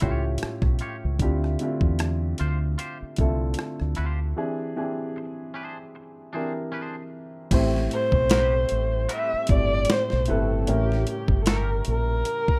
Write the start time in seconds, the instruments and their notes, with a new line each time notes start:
Already playing: grand piano A2 A3 C#4 F4 G4
0.00 fingered electric bass C#2, grand piano A2 A3 C#4 F4 G4, clean electric guitar F4 G4 C#5, kick, closed hi-hat
0.38 closed hi-hat
0.43 muted fingered electric bass stroke, cross-stick
0.62 fingered electric bass B1, kick, cross-stick
0.79 clean electric guitar F4 G4 C#5, closed hi-hat
1.05 fingered electric bass C#2
1.19 fingered electric bass D2, grand piano D3 A3 C4 E4 F4 G4, kick, closed hi-hat
1.44 cross-stick
1.59 grand piano D3 A3 C4 E4 F4 G4, closed hi-hat
1.81 fingered electric bass E2, kick
1.99 muted clean electric guitar stroke, cross-stick, closed hi-hat
2.38 fingered electric bass D2, clean electric guitar F4 G4 C5, closed hi-hat
2.78 clean electric guitar F4 G4 C5, closed hi-hat
3.02 muted fingered electric bass stroke
3.16 fingered electric bass C2, grand piano D3 A3 C4 E4 F4, kick, closed hi-hat
3.21 grand piano A4
3.54 closed hi-hat
3.59 muted clean electric guitar stroke, cross-stick
3.80 fingered electric bass D2, cross-stick
3.95 fingered electric bass D2, clean electric guitar F4 G4 C5, closed hi-hat
4.36 grand piano E3 C4 D4 G4 G#4
4.76 grand piano E3 C4 D4 G4 G#4
5.16 muted clean electric guitar stroke
5.54 clean electric guitar D4 G#4 C5
5.95 muted clean electric guitar stroke
6.33 grand piano E3 C4 D4 G4 A#4, clean electric guitar D4 G#4 C5
6.72 clean electric guitar D4 G#4 C5
7.51 fingered electric bass A1, grand piano A2 A3 C4 G4 C5, tonewheel organ G3 A3 C4 G4, kick, closed hi-hat, crash
7.76 snare
7.91 viola C5, closed hi-hat
8.12 fingered electric bass B1, kick
8.30 clean electric guitar C4 G4 B4, snare, closed hi-hat
8.69 fingered electric bass A1, closed hi-hat
9.09 clean electric guitar C4 G4 B4, closed hi-hat
9.14 viola E5
9.34 muted fingered electric bass stroke
9.47 fingered electric bass G1, grand piano A2 A3 C4 G4, kick, closed hi-hat
9.51 grand piano D5, viola D5
9.85 closed hi-hat
9.90 viola C5, snare
10.10 fingered electric bass B1, snare
10.26 grand piano A2 A3 C4 G4 B4, closed hi-hat
10.30 fingered electric bass G1, viola A4
10.67 fingered electric bass A1, grand piano A2 A3 C#4 G4 A#4, tonewheel organ C#3 A#4, closed hi-hat
10.71 viola G4
10.92 snare
11.07 viola G4, closed hi-hat
11.28 fingered electric bass G1, kick
11.42 viola A4
11.46 clean electric guitar C#4 G4 A#4, snare, closed hi-hat
11.50 viola A#4
11.85 fingered electric bass A#1, closed hi-hat
11.92 viola A#4
12.25 closed hi-hat
12.48 muted fingered electric bass stroke, kick